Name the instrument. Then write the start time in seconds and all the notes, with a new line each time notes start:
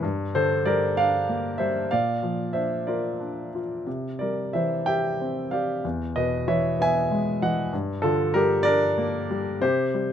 grand piano
0.03 G2
0.35 D3 A4 C5
0.66 G3 A#4 D5
0.97 D4 D5 F5
1.29 A#3
1.58 G3 C5 E5
1.91 A#2 D5 F5
2.23 F3
2.53 D4 C5 E5
2.87 F4 A#4 D5
3.20 D4
3.55 F4
3.87 C3
4.19 G3 A#4 D5
4.53 E3 C5 E5
4.86 G4 E5 G5
5.21 C4
5.51 G4 D5 F5
5.84 E2
6.16 B2 B4 D#5
6.48 E3 C#5 E5
6.79 B3 E5 G#5
7.11 G#3
7.42 E3 D#5 F#5
7.73 G2
8.02 D3 F4 A4
8.34 G3 G4 A#4
8.63 D4 A#4 D5
8.98 A#3
9.31 G3
9.61 C3 G4 C5
9.94 G3